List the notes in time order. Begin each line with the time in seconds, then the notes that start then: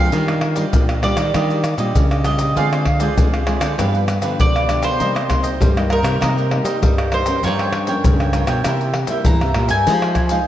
Already playing: F3 C4 D4 A#4 D5 F5
0.12 D#3 G3 D4 F4 G4 D5 D#5, pandeiro, maracas, surdo
0.28 G4 D5 D#5, pandeiro, tamborim, maracas
0.41 muted cavaquinho stroke, pandeiro, tamborim
0.56 G3 D4 F4 G4 D5 D#5, pandeiro, maracas
0.73 A#2, pandeiro, maracas, surdo
0.89 G4 D5 D#5, pandeiro, tamborim, maracas
1.02 G3 D4 F4 G4 D5 D#5, pandeiro, tamborim
1.17 D#3 G4 D5 D#5, pandeiro, tamborim, maracas
1.34 D#3 G3 D4 F4 G4 D5 D#5, pandeiro, tamborim, maracas, surdo
1.50 G4 D5 D#5, pandeiro, maracas
1.64 muted cavaquinho stroke, pandeiro, tamborim, maracas
1.78 A#2 G3 D4 F4 G4 D5 D#5, pandeiro, maracas
1.95 A#2 C#3, pandeiro, maracas, surdo
2.11 G4 D5 D#5, pandeiro, tamborim, maracas
2.24 G3 D4 F4 G4 D5 D#5, pandeiro, tamborim, maracas
2.39 G4 D5 D#5, pandeiro, maracas
2.56 D3 G#3 C4 F4 G#4 C5 D5 F5, pandeiro, maracas, surdo
2.72 G#4 C5 D5, pandeiro, tamborim, maracas
2.85 muted cavaquinho stroke, pandeiro, tamborim, surdo
3.00 G#3 C4 F4 G#4 C5 D5, pandeiro, maracas
3.18 D3 G#3, pandeiro, maracas, surdo
3.33 G#4 C5 D5, pandeiro, tamborim, maracas
3.46 G#3 C4 F4 G#4 C5 D5, pandeiro, tamborim
3.60 D3 G#4 C5 D5, pandeiro, tamborim, maracas
3.78 G2 F3 B3 D4 G4 B4 F5, pandeiro, tamborim, maracas, surdo
3.94 G4 B4 F5, pandeiro, maracas
4.08 muted cavaquinho stroke, pandeiro, tamborim, maracas
4.21 D3 F3 B3 D4 G4 B4 F5, pandeiro, maracas
4.39 B2 D3 D5, pandeiro, maracas, surdo
4.55 G4 B4 F5, pandeiro, tamborim, maracas
4.68 F3 B3 D4 G4 B4 F5, pandeiro, tamborim, maracas
4.82 G4 B4 C5 F5, pandeiro, maracas
4.99 C3 G3 A#3 D#4 A#4 C5 D#5, pandeiro, maracas, surdo
5.15 A#4 C5 D#5, pandeiro, tamborim, maracas
5.29 G3 A#3 D#4, muted cavaquinho stroke, pandeiro, tamborim, maracas, surdo
5.43 A#4 C5 D#5, pandeiro, maracas
5.61 G2 G3, pandeiro, maracas, surdo
5.77 G3 A#3 D#4 A#4 C5 D#5, pandeiro, tamborim, maracas
5.90 D#4 A#4 C5 D#5, pandeiro, tamborim
6.03 C3 A#4 C5 D#5, pandeiro, tamborim, maracas
6.21 C3 G3 A#3 D#4 A#4 C5 D#5, pandeiro, tamborim, maracas, surdo
6.38 A#4 C5 D#5, pandeiro, maracas
6.51 G3 A#3 D#4, muted cavaquinho stroke, pandeiro, tamborim
6.64 G3 A#4 C5 D#5, pandeiro, maracas
6.82 G2 G3, pandeiro, maracas, surdo
6.98 A#4 C5 D#5, pandeiro, tamborim, maracas
7.12 G3 A#3 D#4 A#4 C5 D#5, pandeiro, tamborim
7.26 F3 A#3 C#4 A#4 C5 D#5, pandeiro, maracas
7.43 G2 F4 A#4 C#5 G5, pandeiro, maracas, surdo
7.59 A#4 C#5 G5, pandeiro, tamborim, maracas
7.73 muted cavaquinho stroke, pandeiro, tamborim
7.87 F3 A#3 C#4 A#4 C#5 G5, pandeiro, maracas
8.04 G2 C#3, pandeiro, maracas, surdo
8.20 A#4 C#5 G5, pandeiro, tamborim, maracas
8.33 F3 A#3 C#4 F4 A#4 C#5 G5, pandeiro, tamborim, maracas
8.47 B2 A#4 C#5 G5, pandeiro, tamborim, maracas
8.64 C3 A#3 E4 G4 A#4 C5, pandeiro, tamborim, maracas, surdo
8.69 E5
8.81 C5 E5, pandeiro, maracas
8.85 A#4
8.94 muted cavaquinho stroke, pandeiro, tamborim
9.07 G3 A#3 E4 G4 C5 E5, pandeiro, maracas
9.12 A#4
9.25 G2 E3 A#5, pandeiro, maracas, surdo
9.41 C3 A#4 C5 E5, pandeiro, tamborim, maracas
9.54 A#2 A#3 E4 G4 A#4 C5, pandeiro, tamborim
9.59 E5
9.69 G2 E5 G#5, pandeiro, maracas
9.73 A#4 C5
9.87 F3 G#3 D#4 G4 G#4 C5 F5, pandeiro, maracas, surdo
10.02 C5 F5, pandeiro, tamborim, maracas
10.07 G#4
10.15 muted cavaquinho stroke, pandeiro, tamborim, maracas, surdo
10.29 G#3 D#4 G#4 C5 F5, pandeiro, maracas